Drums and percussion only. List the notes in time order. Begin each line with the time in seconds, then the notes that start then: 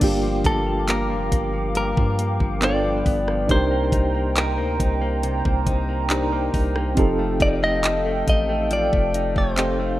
0.01 kick, closed hi-hat, crash
0.44 kick, closed hi-hat
0.88 clap, closed hi-hat
1.32 kick, closed hi-hat
1.75 closed hi-hat
1.97 kick
2.19 closed hi-hat
2.40 kick
2.62 clap, closed hi-hat
3.06 kick, open hi-hat
3.28 cross-stick
3.49 kick, closed hi-hat
3.92 kick, closed hi-hat
4.36 clap, closed hi-hat
4.80 kick, closed hi-hat
5.23 closed hi-hat
5.45 kick
5.66 kick, closed hi-hat
6.10 clap, closed hi-hat
6.54 kick, open hi-hat
6.76 cross-stick
6.97 kick, closed hi-hat
7.40 kick, closed hi-hat
7.84 clap, closed hi-hat
8.28 kick, closed hi-hat
8.71 closed hi-hat
8.93 kick
9.14 closed hi-hat
9.36 kick
9.58 clap, closed hi-hat